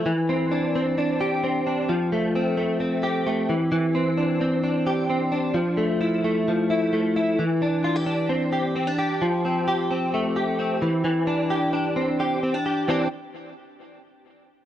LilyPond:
\new Staff \with { instrumentName = "Clean electric guitar" } { \time 4/4 \key c \major \tempo 4 = 131 e8 c'8 d'8 c'8 d'8 g'8 c'8 d'8 | f8 a8 c'8 a8 c'8 g'8 a8 e8 | e8 c'8 d'8 c'8 d'8 g'8 c'8 d'8 | f8 a8 e'8 a8 f8 e'8 a8 e'8 |
e8 d'8 f'16 g'16 d'8 c'8 g'8 c'16 d'16 g'8 | f8 c'8 g'8 c'8 a8 g'8 c'8 e8 | e8 d'8 g'8 d'8 c'8 g'8 c'16 d'16 g'8 | <e c' d' g'>8 r2. r8 | }